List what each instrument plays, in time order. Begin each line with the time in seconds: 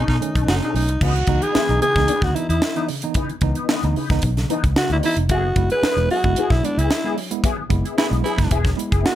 Already playing: clean electric guitar C#4 D#4 A4, alto saxophone D#4
0.08 fingered electric bass B2, tine electric piano B2, baritone saxophone D#4, kick, snare
0.21 tine electric piano D#3 A3 C#4, muted clean electric guitar stroke, closed hi-hat
0.35 fingered electric bass B1, clean electric guitar C#4 D#4 A4, kick, closed hi-hat
0.47 fingered electric bass F#1, tine electric piano A3 C#4, baritone saxophone D#4, alto saxophone F#4, muted clean electric guitar stroke, snare
0.62 tine electric piano B2, clean electric guitar C#4 D#4 A4, alto saxophone D#4, closed hi-hat
0.74 fingered electric bass B1, tine electric piano A3 C#4, alto saxophone D#4, muted clean electric guitar stroke, open hi-hat
0.89 fingered electric bass C2, muted clean electric guitar stroke, closed hi-hat
1.01 fingered electric bass C#2, tine electric piano C#3, clean electric guitar E3 B3 D#4, alto saxophone F#4, kick, crash
1.15 tine electric piano B3 D#4, muted clean electric guitar stroke, closed hi-hat
1.27 fingered electric bass C#2, tine electric piano E3 B3 D#4, muted clean electric guitar stroke, kick, closed hi-hat
1.42 clean electric guitar E3 B3 D#4, alto saxophone G#4, closed hi-hat
1.54 clean electric guitar E3 B3 E4, muted fingered electric bass stroke, snare
1.69 fingered electric bass B1, tine electric piano E3 B3 D#4, muted clean electric guitar stroke, closed hi-hat
1.82 tine electric piano C#3, clean electric guitar E3 B3 D#4, alto saxophone G#4, closed hi-hat
1.96 fingered electric bass C#2, tine electric piano E3 B3 D#4, kick, snare, closed hi-hat
2.07 clean electric guitar E3 B3 D#4, tine electric piano B3 D#4, closed hi-hat
2.22 fingered electric bass D2, tine electric piano C#3, alto saxophone F#4, kick, snare
2.35 tine electric piano E3 B3 D#4, alto saxophone E4, muted clean electric guitar stroke, closed hi-hat
2.49 fingered electric bass E2, clean electric guitar E3 B3 D#4, alto saxophone E4, closed hi-hat
2.62 muted clean electric guitar stroke, snare
2.76 tine electric piano E3 B3 D#4, clean electric guitar E3 B3 D#4, closed hi-hat
2.88 tine electric piano C#3, muted clean electric guitar stroke, open hi-hat
3.02 tine electric piano E3 B3 D#4, muted clean electric guitar stroke, closed hi-hat
3.14 tine electric piano C#3, clean electric guitar E3 B3 D#4, kick, closed hi-hat
3.29 tine electric piano B3 D#4, muted clean electric guitar stroke, closed hi-hat
3.41 fingered electric bass C#2, tine electric piano E3 B3 D#4, muted clean electric guitar stroke, kick, closed hi-hat
3.55 clean electric guitar E3 B3 D#4, closed hi-hat
3.69 clean electric guitar E3 B3 D#4, snare
3.83 fingered electric bass D2, tine electric piano E3 B3 D#4, muted clean electric guitar stroke, closed hi-hat
3.96 tine electric piano C#3, clean electric guitar E3 B3 D#4, open hi-hat
4.10 fingered electric bass C#2, tine electric piano E3 B3 D#4, muted clean electric guitar stroke, kick, snare, closed hi-hat
4.22 fingered electric bass B1, tine electric piano B3 D#4, muted clean electric guitar stroke, kick, closed hi-hat
4.37 tine electric piano C#3, muted clean electric guitar stroke, snare, closed hi-hat
4.49 clean electric guitar E3 B3 D#4, tine electric piano E3 B3 D#4, closed hi-hat
4.64 fingered electric bass C#2, muted clean electric guitar stroke, kick, closed hi-hat
4.76 tine electric piano C#3, alto saxophone F#4, muted fingered electric bass stroke, muted clean electric guitar stroke, snare
4.90 fingered electric bass D2, clean electric guitar E3 B3 D#4, alto saxophone E4, closed hi-hat
5.03 tine electric piano E3 B3 D#4, alto saxophone E4, muted clean electric guitar stroke, open hi-hat
5.16 fingered electric bass F1, tine electric piano B3 D#4, muted clean electric guitar stroke, closed hi-hat
5.29 fingered electric bass F#1, tine electric piano F#3, clean electric guitar B3 E4 G#4, alto saxophone F#4, kick, closed hi-hat
5.44 tine electric piano B3 E4, muted clean electric guitar stroke
5.56 fingered electric bass F#1, tine electric piano G#3 B3 E4, muted clean electric guitar stroke, kick, closed hi-hat
5.70 clean electric guitar B3 E4 G#4, alto saxophone B4, closed hi-hat
5.83 clean electric guitar B3 E4 B4, muted fingered electric bass stroke, snare
5.96 fingered electric bass E1, tine electric piano G#3 B3 E4, muted clean electric guitar stroke, closed hi-hat
6.10 tine electric piano F#3, clean electric guitar B3 E4 G#4, alto saxophone F#4, open hi-hat
6.24 fingered electric bass F#1, tine electric piano G#3 B3 E4, muted clean electric guitar stroke, kick, closed hi-hat
6.36 clean electric guitar B3 E4 G#4, muted fingered electric bass stroke, closed hi-hat
6.50 fingered electric bass B1, tine electric piano F#3, alto saxophone E4, kick, snare
6.63 tine electric piano G#3 B3 E4, alto saxophone D4, muted clean electric guitar stroke, closed hi-hat
6.77 fingered electric bass C#2, clean electric guitar B3 E4 G#4, alto saxophone E4, closed hi-hat
6.91 muted clean electric guitar stroke, snare
7.04 tine electric piano G#3 B3 E4, clean electric guitar B3 E4 G#4
7.16 tine electric piano F#3, muted clean electric guitar stroke, open hi-hat
7.31 tine electric piano G#3 B3 E4, muted clean electric guitar stroke, closed hi-hat
7.44 tine electric piano F#3, clean electric guitar B3 E4 G#4, kick, closed hi-hat
7.58 tine electric piano B3 E4, muted clean electric guitar stroke
7.69 fingered electric bass F#1, tine electric piano G#3 B3 E4, muted clean electric guitar stroke, kick, closed hi-hat
7.85 clean electric guitar B3 E4 G#4, closed hi-hat
7.97 clean electric guitar B3 E4 G#4, baritone saxophone E4, snare
8.10 fingered electric bass B1, tine electric piano G#3 B3 E4, muted clean electric guitar stroke, closed hi-hat
8.23 tine electric piano F#3, clean electric guitar B3 E4 G#4, baritone saxophone E4, closed hi-hat
8.37 fingered electric bass F#1, tine electric piano G#3 B3 E4, kick, snare, closed hi-hat
8.50 fingered electric bass E1, clean electric guitar B3 E4 G#4, kick, closed hi-hat
8.64 tine electric piano F#3, kick, snare, closed hi-hat
8.76 tine electric piano G#3 B3 E4, muted clean electric guitar stroke, closed hi-hat
8.91 fingered electric bass F#1, clean electric guitar B3 E4 G#4, kick, closed hi-hat
9.03 tine electric piano B3 E4, alto saxophone F#4, muted fingered electric bass stroke, snare